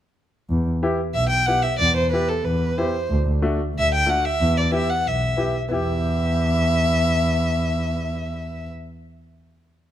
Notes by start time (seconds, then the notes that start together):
0.49 E2
0.83 B3 E4 G4
1.14 B1 E5
1.30 G5
1.46 B3 E4 G4 F#5
1.63 E5
1.79 E2 D5
1.97 C5
2.12 B3 E4 G4 B4
2.29 A4
2.44 E2 B4
2.78 B3 E4 G4 C5
3.10 D2
3.42 A3 D4 F#4
3.75 D2 E5
3.95 G5
4.06 A3 D4 F#4 F#5
4.25 E5
4.40 E2
4.57 D5
4.72 B3 E4 G4 E5
4.90 F#5
5.06 B1 E5
5.37 B3 E4 G4
5.69 E2 B3 E4 E5
5.73 G4